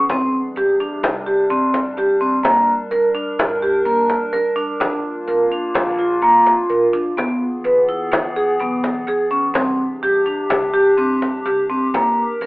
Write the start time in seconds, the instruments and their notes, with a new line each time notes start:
0.09 upright bass C2, ambient pad C3 G3 D4, vibraphone C4, frame drum
0.56 upright bass G2, vibraphone G4
0.80 vibraphone D4
1.03 upright bass C2, frame drum
1.26 vibraphone G4
1.50 upright bass G2, vibraphone C4
1.74 frame drum
1.97 upright bass A1, vibraphone G4
2.21 vibraphone C4
2.43 upright bass G1, vibraphone A#3, ambient pad A#4, frame drum
2.91 upright bass D2, vibraphone A#4
3.15 vibraphone D4
3.39 upright bass G1, frame drum
3.62 vibraphone G4
3.86 upright bass D2, vibraphone A#3
4.10 frame drum
4.33 upright bass G1, vibraphone A#4
4.56 vibraphone D4
4.80 upright bass A#1, ambient pad A#3 F4, vibraphone D4, frame drum
5.28 upright bass F2, vibraphone A#4
5.52 vibraphone D4
5.74 upright bass A#1, frame drum
5.99 vibraphone F4
6.22 upright bass F2, vibraphone A#3, frame drum
6.47 frame drum
6.70 upright bass D2, vibraphone A#4
6.93 upright bass E2, vibraphone D4
7.17 upright bass E2, ambient pad E3 B3 G#4, vibraphone B3, frame drum
7.64 upright bass B1, vibraphone B4
7.89 vibraphone E4
8.11 upright bass E2, frame drum
8.36 vibraphone G#4
8.59 upright bass B1, vibraphone B3
8.84 frame drum
9.07 upright bass E2, vibraphone G#4
9.31 vibraphone C#4
9.54 upright bass C2, ambient pad C3 D4 G4, vibraphone C4, frame drum
10.03 upright bass G2, vibraphone G4
10.26 vibraphone D4
10.50 upright bass C2, frame drum
10.74 vibraphone G4
10.98 upright bass G2, vibraphone C4
11.22 frame drum
11.46 upright bass C2, vibraphone G4
11.70 vibraphone C4
11.94 upright bass G1, vibraphone A#3, ambient pad D4 A#4, frame drum
12.41 upright bass D2, vibraphone A#4